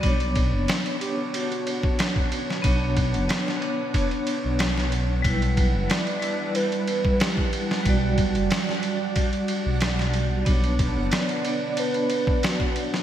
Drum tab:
RD |xxx-xxx-xxx-x-x-|x-xxx-x-xxx-x-x-|xxx-xxx-xxx-x-x-|x-xxx-x-xxx-x-x-|
SD |----o-------o--o|----oo------oo--|----o-------o--o|----oo------oo--|
BD |o-o--------o-o--|o-o-----o-------|o-o--------o-o--|o-o-----o-------|

RD |xxx-xxx-xxx-x-x-|
SD |----o-------o--o|
BD |o-o--------o-o--|